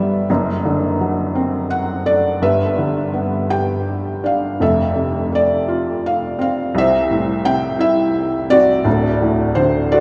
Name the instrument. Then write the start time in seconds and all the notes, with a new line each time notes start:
felt piano
Already playing: G1 G2 D3 G3 B3 D4 B4 D5 E5
0.30 F#1 F#2
0.65 D3
1.00 F#3
1.35 C4
1.70 F#5
2.06 A3 D5
2.42 G1 G2 B4 E5
2.78 D3
3.13 B3
3.50 G4 G5
4.24 D4 F5
4.60 F1 F2 A4 E5
4.96 C3
5.32 A3 D5
5.68 F4
6.06 F5
6.39 C4 F5
6.75 C2 C5 E5
7.11 A2
7.45 C3 G5
7.79 E4 E5
8.50 C4 F#4 D5
8.85 D1 D2
9.22 A2
9.55 D3 C5
9.92 A3 F#4 D5